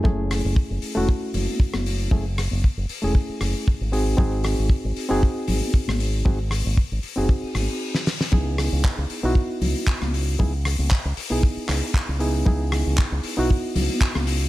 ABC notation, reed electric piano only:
X:1
M:4/4
L:1/16
Q:"Swing 16ths" 1/4=116
K:C#m
V:1 name="Reed electric piano"
[A,CEG]6- [A,CEG] [A,CEF]8- [A,CEF] | [A,CEG] z6 [A,CEG]6- [A,CEG] [^B,DFG]2 | [^B,DFG]6- [B,DFG] [B,DFG]8- [B,DFG] | [^B,DFG] z6 [B,DFG]6- [B,DFG] z2 |
[B,DEG]6- [B,DEG] [B,DEF]8- [B,DEF] | [B,DEG] z6 [B,DEG]6- [B,DEG] [B,DEG]2 | [B,DEG]6- [B,DEG] [B,DEF]8- [B,DEF] |]